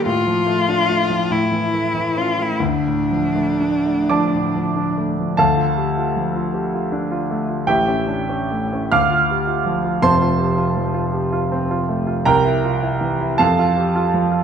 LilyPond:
<<
  \new Staff \with { instrumentName = "Cello" } { \time 6/8 \key d \minor \tempo 4. = 52 f'4. e'4 f'16 e'16 | d'2~ d'8 r8 | r2. | r2. |
r2. | r2. | }
  \new Staff \with { instrumentName = "Grand piano" } { \time 6/8 \key d \minor << { r2. | r4. <d'' a'' d'''>4. | <a' f'' a''>2. | <g' e'' g''>4. <f'' d''' f'''>4. |
<c'' a'' c'''>2. | <bes' g'' bes''>4. <a' f'' a''>8 r4 | } \\ { a,16 f16 a16 d'16 a16 f16 a,16 e16 a16 e16 cis'16 a16 | d,16 a,16 f16 a16 d'16 a16 f16 a,16 f16 d'16 a16 f16 | d,16 f'16 g'16 f'16 f16 f'16 g'16 f'16 d'16 f'16 a16 f'16 | <a,, a,>16 cis'16 d'16 cis'16 a16 cis'16 d,16 f'16 g'16 f'16 f16 f'16 |
<f,, f,>16 f'16 g'16 f'16 f16 f'16 g'16 f'16 c'16 f'16 a16 f'16 | c,16 e'16 f'16 e'16 e16 e'16 f,16 f'16 g'16 f'16 f16 f'16 | } >> }
>>